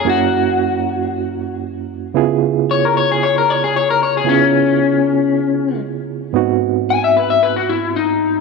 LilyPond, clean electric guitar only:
\new Staff \with { instrumentName = "Clean electric guitar" } { \time 4/4 \key ges \major \tempo 4 = 114 ges'2. r4 | r4 des''16 bes'16 des''16 aes'16 des''16 bes'16 des''16 aes'16 des''16 bes'16 des''16 aes'16 | des'2. r4 | r4 aes''16 fes''16 b'16 fes''16 b'16 ges'16 fes'8 ees'4 | }